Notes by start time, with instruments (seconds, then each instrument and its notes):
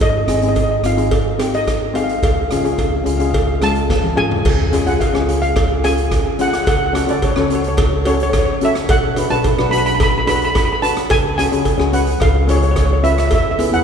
0.00 upright bass G#1, steel pan D#5, kick, closed hi-hat, cowbell
0.10 steel pan D#5
0.18 steel pan D#5
0.26 upright bass G#1, steel pan C4 D#4 G#4 D#5, cross-stick, closed hi-hat
0.34 steel pan D#5
0.42 steel pan C4 D#4 G#4 D#5, closed hi-hat
0.48 steel pan D#5
0.55 steel pan D#5, kick, closed hi-hat, cowbell
0.64 steel pan D#5
0.71 steel pan D#5
0.83 upright bass G#1, steel pan C4 D#4 F4 F5, cross-stick, closed hi-hat
0.97 steel pan C4 D#4 G#4, closed hi-hat
1.11 kick, closed hi-hat, cowbell
1.39 steel pan C4 D#4 G4, cross-stick, closed hi-hat, cowbell
1.54 steel pan D#5, closed hi-hat
1.67 kick, cross-stick, closed hi-hat, cowbell
1.94 steel pan C4 D#4 G#4 F5, closed hi-hat, cowbell
2.04 steel pan F5
2.09 steel pan F5, closed hi-hat
2.18 steel pan F5
2.23 upright bass C#2, steel pan F5, kick, closed hi-hat, cowbell
2.34 steel pan F5
2.41 steel pan F5
2.50 upright bass C#2, steel pan C#4 F4 G#4 F5, cross-stick, closed hi-hat
2.57 steel pan F5
2.63 steel pan C#4 F4 G#4 F5, closed hi-hat
2.73 steel pan F5
2.78 steel pan F5, kick, closed hi-hat, cowbell
2.88 steel pan F5
2.97 steel pan F5
3.04 upright bass C#2, steel pan C#4 F4 G#4 F5, closed hi-hat
3.10 steel pan F5
3.18 steel pan C#4 F4 G#4 F5, closed hi-hat
3.25 steel pan F5
3.31 steel pan F5, kick, closed hi-hat, cowbell
3.39 steel pan F5
3.47 steel pan F5
3.55 steel pan F5
3.61 steel pan G#3 C#4 F4 F5 A5, cross-stick, closed hi-hat, cowbell
3.69 steel pan F5
3.75 closed hi-hat
3.90 kick, snare, cowbell
4.03 high tom
4.16 steel pan C#4 F4 G#4 G#5, mid tom, cowbell
4.31 floor tom
4.45 upright bass C#2, kick, crash, cowbell
4.72 steel pan C#4 F4 G#4, closed hi-hat, cowbell
4.86 upright bass C#2, steel pan C#4 F4 G#4 F#5, closed hi-hat
5.00 steel pan F5, kick, closed hi-hat, cowbell
5.13 upright bass C#2, steel pan C#4 F4 G#4, cross-stick
5.28 steel pan C#4 F4 G#4, closed hi-hat
5.42 steel pan F5, closed hi-hat
5.56 kick, cross-stick, closed hi-hat, cowbell
5.84 steel pan C#4 F4 G#4 G#5, closed hi-hat, cowbell
5.98 closed hi-hat
6.11 kick, cross-stick, closed hi-hat, cowbell
6.39 steel pan C#4 F4 G#4 F#5, closed hi-hat
6.48 steel pan F#5
6.53 steel pan F#5, cross-stick, closed hi-hat
6.64 upright bass C#2, steel pan F#5, kick, closed hi-hat, cowbell
6.69 steel pan F#5
6.77 steel pan F#5
6.86 steel pan F#5
6.93 steel pan C#4 F#4 A4 F#5, cross-stick, closed hi-hat, cowbell
7.07 upright bass C#2, steel pan C#4 F#4 A4 D5, closed hi-hat
7.22 steel pan C#5, kick, closed hi-hat, cowbell
7.32 steel pan C#5
7.36 upright bass C#2, steel pan C#4 F#4 A4 C#5, cross-stick
7.46 steel pan C#5
7.50 steel pan C#4 F#4 A4, closed hi-hat
7.55 steel pan C#5
7.62 steel pan C#5, closed hi-hat
7.68 steel pan C#5
7.77 kick, cross-stick, closed hi-hat, cowbell
8.05 steel pan C#4 F#4 A4 C#5, closed hi-hat, cowbell
8.14 steel pan C#5
8.20 steel pan C#5, closed hi-hat
8.30 steel pan C#5, kick, cross-stick, closed hi-hat, cowbell
8.39 steel pan C#5
8.45 steel pan C#5
8.53 steel pan C#5
8.61 steel pan C#4 F#4 A4 E5, closed hi-hat
8.75 cross-stick, closed hi-hat
8.89 upright bass B1, steel pan F#5, kick, closed hi-hat, cowbell
9.16 steel pan D4 F#4 B4, closed hi-hat, cowbell
9.30 upright bass B1, steel pan D4 F#4 B4 A5, closed hi-hat
9.44 kick, closed hi-hat, cowbell
9.58 upright bass B1, steel pan D4 F#4 B4, cross-stick
9.71 steel pan D4 F#4 B4 B5, closed hi-hat
9.78 steel pan B5
9.86 steel pan B5, closed hi-hat
9.95 steel pan B5
10.00 steel pan B5, kick, cross-stick, closed hi-hat, cowbell
10.10 steel pan B5
10.18 steel pan B5
10.27 steel pan D4 F#4 B4 B5, closed hi-hat, cowbell
10.36 steel pan B5
10.42 steel pan B5, closed hi-hat
10.50 steel pan B5
10.55 steel pan B5, kick, cross-stick, closed hi-hat, cowbell
10.65 steel pan B5
10.73 steel pan B5
10.82 steel pan D4 F#4 B4 A5, closed hi-hat
10.97 cross-stick, closed hi-hat
11.10 upright bass C#2, steel pan G#5, kick, closed hi-hat, cowbell
11.38 steel pan C#4 F#4 G#4 G#5, cross-stick, closed hi-hat
11.52 upright bass C#2, steel pan C#4 F#4 G#4, closed hi-hat
11.65 kick, closed hi-hat, cowbell
11.77 upright bass C#2, steel pan C#4 F#4 G#4, cross-stick
11.92 steel pan C#4 F#4 B4 F#5, closed hi-hat
12.06 closed hi-hat
12.20 upright bass C#2, steel pan F5, kick, cross-stick, closed hi-hat, cowbell
12.47 steel pan C#4 F4 G#4 C#5, closed hi-hat, cowbell
12.56 steel pan C#5
12.62 steel pan C#5, closed hi-hat
12.71 steel pan C#5
12.76 steel pan C#5, kick, cross-stick, closed hi-hat, cowbell
12.86 steel pan C#5
12.93 steel pan C#5
13.03 steel pan C#4 F4 B4 E5, closed hi-hat
13.11 steel pan E5
13.18 steel pan E5, cross-stick, closed hi-hat
13.27 steel pan E5, closed hi-hat, cowbell
13.32 upright bass E2, steel pan E5, kick
13.43 steel pan E5
13.51 steel pan E5
13.58 steel pan B3 E4 G#4 E5, closed hi-hat, cowbell
13.72 upright bass E2, steel pan B3 E4 G#4 F#5, closed hi-hat